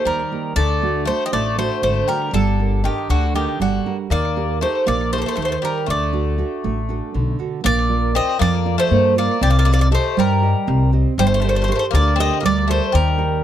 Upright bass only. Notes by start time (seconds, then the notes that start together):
0.05 D#2
0.56 D2
1.32 A1
1.82 G#1
2.33 G1
3.10 D2
3.60 G1
4.10 D#2
4.87 A#1
5.37 D#2
5.88 D2
6.64 A1
7.15 B1
7.65 A#1
8.41 F2
8.91 G2
9.41 C2
10.17 G2
10.68 C2
11.18 G1
11.93 D2
12.43 D2
12.94 D#2